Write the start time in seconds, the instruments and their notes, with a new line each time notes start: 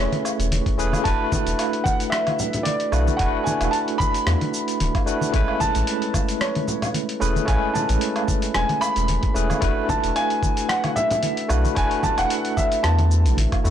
Already playing: tine electric piano A3 C#4 E4 G#4 B4
0.00 grand piano C#5
0.12 closed hi-hat, high conga
0.25 low woodblock, shaker
0.39 sub bass E1, closed hi-hat, shaker
0.52 sub bass E1, closed hi-hat, high conga, shaker
0.66 kick, closed hi-hat
0.78 sub bass E1, tine electric piano A3 C#4 E4 G#4 B4, shaker
0.93 high conga, low woodblock, shaker
1.04 sub bass E1, tine electric piano A3 D4 E4 F#4 B4, grand piano A5, kick, closed hi-hat, shaker
1.32 kick, high conga, low conga, shaker
1.46 sub bass E1, closed hi-hat, shaker
1.59 closed hi-hat, low woodblock, shaker
1.73 closed hi-hat
1.84 grand piano F#5, kick, high conga, shaker
2.00 closed hi-hat, shaker
2.10 grand piano E5, cross-stick, closed hi-hat, shaker
2.27 closed hi-hat, high conga, low woodblock
2.39 low conga, shaker
2.53 closed hi-hat, low conga, shaker
2.63 grand piano D5, closed hi-hat, high conga, shaker
2.80 closed hi-hat
2.92 sub bass B1, tine electric piano A3 D4 E4 F#4 B4, low woodblock, shaker
3.07 high conga, shaker
3.17 sub bass E1, tine electric piano A3 D4 E4 F#4, grand piano F#5, kick, closed hi-hat, shaker
3.21 tine electric piano B4
3.44 grand piano G#5, high conga, low conga, shaker
3.61 sub bass E1, closed hi-hat, low woodblock, shaker
3.71 grand piano A5, closed hi-hat, shaker
3.88 closed hi-hat
3.98 grand piano B5, kick, high conga, shaker
4.14 closed hi-hat, shaker
4.26 sub bass E2, cross-stick, closed hi-hat, low woodblock, shaker
4.41 closed hi-hat, high conga
4.54 shaker
4.68 closed hi-hat, shaker
4.80 sub bass D1, closed hi-hat, high conga, shaker
4.95 kick, closed hi-hat, low woodblock
5.06 tine electric piano A3 D4 E4 F#4 B4, shaker
5.21 high conga, shaker
5.32 sub bass A1, tine electric piano G#3 A3 C#4 E4 B4, kick, closed hi-hat, shaker
5.48 low woodblock
5.60 grand piano A5, kick, high conga, low conga, shaker
5.75 sub bass A1, closed hi-hat, shaker
5.87 closed hi-hat, shaker
6.02 closed hi-hat
6.14 kick, high conga, low woodblock, shaker
6.29 closed hi-hat, shaker
6.41 grand piano C#5, cross-stick, closed hi-hat, shaker
6.55 closed hi-hat, high conga
6.68 low conga, shaker
6.82 closed hi-hat, low conga, low woodblock, shaker
6.94 closed hi-hat, high conga, shaker
7.09 closed hi-hat
7.20 sub bass E1, tine electric piano A3 C#4 E4 G#4 B4, shaker
7.36 high conga, shaker
7.46 sub bass A1, tine electric piano G#3 A3 C#4 E4 B4, grand piano G#5, kick, closed hi-hat, low woodblock, shaker
7.74 grand piano A5, high conga, low conga, shaker
7.89 sub bass A1, closed hi-hat, shaker
8.01 closed hi-hat, shaker
8.16 closed hi-hat, low woodblock
8.28 kick, high conga, shaker
8.42 closed hi-hat, shaker
8.54 sub bass E1, grand piano G#5, cross-stick, closed hi-hat, shaker
8.69 closed hi-hat, high conga
8.81 grand piano B5, low woodblock, shaker
8.96 sub bass E1, closed hi-hat, shaker
9.08 sub bass E1, closed hi-hat, high conga, shaker
9.23 kick, closed hi-hat
9.34 sub bass E1, tine electric piano A3 C#4 E4 G#4 B4, shaker
9.50 high conga, low woodblock, shaker
9.61 sub bass E1, tine electric piano A3 D4 E4 F#4 B4, kick, closed hi-hat, shaker
9.89 grand piano A5, kick, high conga, low conga, shaker
10.04 sub bass E1, closed hi-hat, shaker
10.16 grand piano G#5, closed hi-hat, low woodblock, shaker
10.30 closed hi-hat
10.43 kick, high conga, shaker
10.57 closed hi-hat, shaker
10.69 grand piano F#5, cross-stick, closed hi-hat, shaker
10.84 closed hi-hat, high conga, low woodblock
10.96 grand piano E5, low conga, shaker
11.11 closed hi-hat, low conga, shaker
11.23 closed hi-hat, high conga, shaker
11.37 closed hi-hat
11.49 sub bass B1, tine electric piano A3 D4 E4 F#4 B4, low woodblock, shaker
11.65 high conga, shaker
11.75 sub bass E1, tine electric piano A3 D4 E4 F#4 B4, grand piano G#5, kick, closed hi-hat, shaker
11.91 closed hi-hat
12.03 grand piano A5, kick, high conga, low conga, shaker
12.18 sub bass E1, grand piano F#5, closed hi-hat, low woodblock, shaker
12.30 closed hi-hat, shaker
12.45 closed hi-hat
12.57 grand piano E5, kick, high conga, shaker
12.72 closed hi-hat, shaker
12.83 sub bass E2, grand piano A5, cross-stick, closed hi-hat, low woodblock, shaker
12.99 closed hi-hat, high conga
13.11 shaker
13.25 sub bass A1, closed hi-hat, shaker
13.37 sub bass A1, closed hi-hat, high conga, shaker
13.52 kick, closed hi-hat, low woodblock
13.64 sub bass E2, tine electric piano A3 D4 E4 F#4 A4, shaker